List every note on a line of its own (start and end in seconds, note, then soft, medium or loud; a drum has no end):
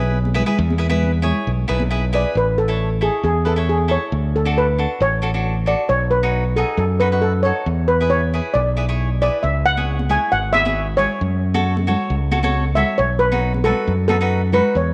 0.00 0.42 B1 medium
0.00 0.17 E4 medium
0.00 0.18 G#4 medium
0.00 0.18 B4 medium
0.25 high conga medium
0.34 0.42 E4 medium
0.34 0.42 G#4 medium
0.34 0.42 B4 medium
0.34 low conga medium
0.46 0.57 E4 medium
0.46 0.57 G#4 medium
0.46 0.57 B4 medium
0.46 low conga medium
0.58 1.31 E2 loud
0.70 high conga medium
0.78 0.86 E4 medium
0.78 0.86 G#4 medium
0.78 0.86 B4 medium
0.89 1.10 E4 medium
0.89 1.10 G#4 medium
0.89 1.10 B4 loud
0.89 low conga medium
1.03 high conga medium
1.22 1.50 E4 medium
1.22 1.50 G#4 medium
1.22 1.50 C#5 medium
1.22 low conga medium
1.47 1.65 B1 medium
1.68 2.24 B1 loud
1.68 1.82 E4 medium
1.68 1.82 G#4 medium
1.68 1.82 B4 medium
1.80 high conga medium
1.90 2.04 E4 medium
1.90 2.04 G#4 medium
1.90 2.04 B4 medium
2.13 2.35 E4 medium
2.13 2.35 G#4 medium
2.13 2.35 B4 medium
2.13 2.37 D5 medium
2.35 3.08 A1 medium
2.35 2.59 B4 medium
2.58 2.99 A4 medium
2.68 2.88 E4 medium
2.68 2.89 A4 medium
2.68 2.89 C#5 medium
3.01 3.28 E4 medium
3.01 3.23 G#4 medium
3.01 3.28 A4 medium
3.01 3.28 C#5 medium
3.24 3.96 E2 medium
3.24 3.34 G#4 medium
3.45 3.52 E4 medium
3.45 3.52 A4 medium
3.45 3.56 A4 medium
3.45 3.52 B4 medium
3.56 3.77 E4 medium
3.56 3.77 A4 medium
3.56 3.77 C#5 medium
3.69 3.91 G#4 medium
3.88 4.11 E4 medium
3.88 4.11 A4 medium
3.88 4.12 C#5 medium
3.88 4.36 C#5 medium
4.12 4.85 D2 medium
4.36 4.45 A4 medium
4.45 4.66 D4 medium
4.45 4.66 F#4 medium
4.45 4.66 A4 medium
4.58 5.03 B4 medium
4.78 5.05 D4 medium
4.78 5.06 F#4 medium
4.78 5.06 A4 medium
5.00 5.74 A1 medium
5.00 5.70 C#5 medium
5.22 5.29 D4 medium
5.22 5.30 F#4 medium
5.22 5.30 A4 medium
5.34 5.54 D4 medium
5.34 5.54 F#4 medium
5.34 5.54 A4 medium
5.66 5.89 D4 medium
5.66 5.89 F#4 medium
5.66 5.89 A4 medium
5.66 5.90 D5 medium
5.89 6.62 B1 medium
5.89 6.10 C#5 medium
6.11 6.52 B4 medium
6.23 6.43 D#4 medium
6.23 6.43 F#4 medium
6.23 6.43 B4 medium
6.56 6.83 D#4 medium
6.56 6.83 F#4 soft
6.56 6.84 G#4 medium
6.56 6.77 A4 medium
6.77 7.51 F#2 medium
6.77 7.01 A4 medium
7.00 7.07 D#4 medium
7.00 7.08 F#4 medium
7.00 7.23 B4 medium
7.00 7.08 B4 medium
7.12 7.32 D#4 medium
7.12 7.32 F#4 medium
7.12 7.32 B4 medium
7.22 7.45 A4 medium
7.43 7.67 D#4 medium
7.43 7.67 F#4 medium
7.43 7.67 A4 medium
7.43 7.89 C#5 medium
7.66 8.39 E2 medium
7.88 8.11 B4 medium
8.01 8.20 E4 medium
8.01 8.21 G#4 medium
8.01 8.21 B4 medium
8.10 8.56 C#5 medium
8.34 8.60 E4 medium
8.34 8.61 G#4 medium
8.34 8.60 B4 medium
8.54 9.28 B1 medium
8.54 9.21 D5 medium
8.77 8.84 E4 medium
8.77 8.84 G#4 medium
8.77 8.84 B4 medium
8.89 9.09 E4 medium
8.89 9.09 G#4 medium
8.89 9.09 C#5 medium
9.22 9.44 E4 medium
9.22 9.44 G#4 soft
9.22 9.44 B4 medium
9.22 9.45 D5 medium
9.43 10.17 C#2 medium
9.43 9.66 E5 medium
9.66 10.07 F#5 loud
9.77 9.97 E4 medium
9.77 9.97 G#4 medium
9.77 9.98 C#5 medium
9.77 high conga medium
9.99 high conga medium
10.09 10.37 E4 medium
10.09 10.37 G#4 medium
10.09 10.37 C#5 medium
10.09 10.33 G#5 medium
10.09 low conga medium
10.32 11.05 G#1 medium
10.32 10.55 F#5 loud
10.53 10.61 E4 medium
10.53 10.61 G#4 medium
10.53 10.61 C#5 medium
10.53 10.99 E5 medium
10.53 high conga medium
10.65 10.86 E4 medium
10.65 10.86 G#4 medium
10.65 10.86 C#5 medium
10.65 high conga medium
10.97 11.21 E4 medium
10.97 11.21 G#4 soft
10.97 12.80 C#5 medium
10.97 11.21 C#5 medium
10.97 low conga medium
11.21 11.94 F#2 medium
11.54 11.74 F#4 medium
11.54 11.75 A4 medium
11.54 11.75 C#5 medium
11.54 high conga medium
11.77 high conga medium
11.87 12.14 F#4 medium
11.87 12.14 A4 medium
11.87 12.14 C#5 medium
11.87 low conga medium
12.10 12.83 C#2 medium
12.32 12.39 F#4 medium
12.32 12.39 A4 medium
12.32 12.39 C#5 medium
12.32 high conga medium
12.43 12.63 F#4 medium
12.43 12.63 A4 medium
12.43 12.63 C#5 medium
12.43 high conga medium
12.75 12.98 F#4 medium
12.75 12.98 A4 medium
12.75 12.99 C#5 medium
12.75 12.99 E5 medium
12.75 low conga medium
12.98 13.71 B1 medium
12.98 13.08 C#5 medium
13.19 13.61 B4 medium
13.32 13.52 D#4 medium
13.32 13.52 F#4 medium
13.32 13.52 B4 medium
13.32 high conga medium
13.54 high conga medium
13.64 13.91 D#4 medium
13.64 13.92 F#4 medium
13.64 14.07 A4 medium
13.64 13.92 B4 medium
13.64 low conga medium
13.88 14.60 F#2 medium
14.08 14.16 D#4 medium
14.08 14.16 F#4 medium
14.08 14.54 A4 medium
14.08 14.16 B4 medium
14.08 high conga medium
14.21 14.40 D#4 medium
14.21 14.41 F#4 medium
14.21 14.41 B4 medium
14.52 14.75 D#4 medium
14.52 14.75 F#4 soft
14.52 14.75 B4 medium
14.52 14.76 B4 medium
14.52 low conga medium
14.75 14.94 E2 medium
14.75 14.94 C#5 medium